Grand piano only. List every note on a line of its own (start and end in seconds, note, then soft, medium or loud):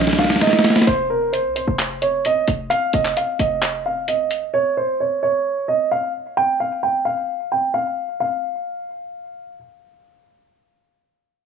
0.00 0.16 D#5 medium
0.19 0.39 F5 medium
0.41 0.85 D#5 medium
0.87 1.07 C5 loud
1.10 1.30 A#4 medium
1.33 1.53 C5 medium
1.56 1.99 C5 medium
2.02 2.22 C#5 medium
2.26 2.45 D#5 medium
2.70 2.90 F5 loud
2.93 3.13 D#5 medium
3.17 3.37 F5 medium
3.39 3.82 D#5 medium
3.86 4.05 F5 medium
4.08 4.51 D#5 medium
4.54 4.74 C#5 loud
4.77 4.97 C5 medium
5.00 5.20 C#5 medium
5.23 5.66 C#5 medium
5.68 5.88 D#5 medium
5.92 6.11 F5 medium
6.37 6.57 G5 loud
6.60 6.80 F5 medium
6.83 7.03 G5 medium
7.05 7.48 F5 medium
7.52 7.71 G5 medium
7.74 8.17 F5 medium
8.20 9.54 F5 medium